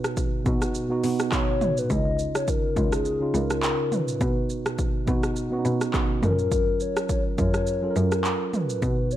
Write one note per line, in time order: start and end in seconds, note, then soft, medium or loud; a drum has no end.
0.00 0.35 B2 medium
0.00 0.35 B3 medium
0.00 0.36 D#4 medium
0.00 0.36 F#4 medium
0.00 0.13 B4 medium
0.04 cross-stick loud
0.04 shaker medium
0.17 kick loud
0.17 shaker medium
0.45 0.84 B2 medium
0.45 0.87 B2 medium
0.45 0.84 B3 medium
0.45 0.85 D#4 medium
0.45 0.85 F#4 loud
0.45 kick loud
0.45 shaker soft
0.62 cross-stick loud
0.62 shaker medium
0.75 shaker medium
0.89 1.78 B2 medium
0.89 1.78 B3 medium
0.89 1.78 D#4 medium
0.89 1.79 F#4 loud
1.04 1.36 B2 medium
1.04 open hi-hat medium
1.04 shaker medium
1.19 cross-stick loud
1.19 shaker medium
1.32 1.80 C#5 loud
1.32 kick loud
1.32 cross-stick medium
1.32 clap medium
1.32 shaker medium
1.61 mid tom loud
1.61 shaker medium
1.77 1.93 B4 loud
1.77 shaker medium
1.89 2.22 C#2 loud
1.89 2.66 C#3 medium
1.89 2.66 C#4 medium
1.89 2.67 D#4 medium
1.89 1.98 E4 medium
1.89 2.35 D#5 loud
1.89 kick loud
1.89 shaker medium
1.98 2.70 F4 medium
2.19 shaker medium
2.35 2.51 C#5 loud
2.35 cross-stick loud
2.35 shaker medium
2.48 2.95 A#4 loud
2.48 kick loud
2.48 shaker medium
2.75 3.18 C#2 medium
2.75 3.15 C#3 medium
2.75 3.15 C#4 medium
2.75 3.15 D#4 medium
2.75 3.16 F4 medium
2.75 kick loud
2.75 shaker soft
2.92 3.37 G#4 loud
2.92 cross-stick loud
2.92 shaker medium
3.05 shaker medium
3.20 4.08 C#3 medium
3.20 4.09 C#4 medium
3.20 4.09 D#4 medium
3.20 4.10 F4 medium
3.34 3.66 C#2 medium
3.34 3.95 A#4 loud
3.34 shaker medium
3.50 cross-stick loud
3.50 shaker medium
3.63 clap loud
3.63 shaker medium
3.92 4.79 B4 loud
3.92 mid tom loud
3.92 shaker medium
4.08 shaker medium
4.20 4.97 B2 medium
4.20 4.53 B2 loud
4.20 4.97 B3 medium
4.20 4.28 D4 medium
4.20 4.98 F#4 medium
4.20 kick loud
4.20 shaker medium
4.28 5.01 D#4 medium
4.50 shaker medium
4.66 cross-stick loud
4.66 shaker medium
4.78 kick loud
4.78 shaker medium
5.06 5.45 B2 medium
5.06 5.49 B2 loud
5.06 5.46 B3 medium
5.06 5.46 D#4 medium
5.06 5.47 F#4 loud
5.06 kick loud
5.06 shaker soft
5.23 cross-stick loud
5.23 shaker medium
5.36 shaker medium
5.51 6.22 B2 medium
5.51 6.23 B3 medium
5.51 5.58 C#4 medium
5.51 6.23 F#4 loud
5.59 6.26 D#4 medium
5.65 5.97 B2 loud
5.65 shaker medium
5.81 cross-stick loud
5.81 shaker medium
5.94 kick loud
5.94 cross-stick medium
5.94 clap medium
5.94 shaker medium
6.21 6.76 F#2 loud
6.21 7.24 F#3 medium
6.21 7.24 C#4 medium
6.21 7.25 F4 medium
6.21 6.30 A4 medium
6.21 6.38 A#4 medium
6.21 mid tom loud
6.21 shaker medium
6.30 7.28 A#4 loud
6.39 shaker medium
6.52 kick loud
6.52 shaker medium
6.80 7.10 C#5 medium
6.80 shaker medium
6.97 cross-stick loud
6.97 shaker medium
7.09 7.23 C#5 medium
7.09 kick loud
7.09 shaker medium
7.37 7.80 F#2 medium
7.37 7.76 F#3 medium
7.37 7.76 C#4 medium
7.37 7.77 F4 medium
7.37 7.77 A#4 medium
7.37 7.99 C#5 loud
7.37 kick loud
7.37 shaker soft
7.54 cross-stick loud
7.54 shaker medium
7.67 shaker medium
7.82 8.70 F#3 medium
7.82 8.70 C#4 medium
7.82 8.71 F4 medium
7.82 7.89 A4 medium
7.91 8.74 A#4 medium
7.96 8.28 F#2 loud
7.96 8.56 A#4 loud
7.96 shaker medium
8.12 cross-stick loud
8.12 shaker medium
8.24 clap medium
8.24 shaker medium
8.54 9.14 B4 loud
8.54 mid tom loud
8.54 shaker soft
8.69 shaker medium
8.81 9.17 B2 medium
8.81 9.14 B2 loud
8.81 9.17 B3 medium
8.81 9.17 D#4 medium
8.81 9.17 F#4 medium
8.81 kick loud
8.81 shaker medium
9.11 9.17 C#5 loud
9.11 shaker medium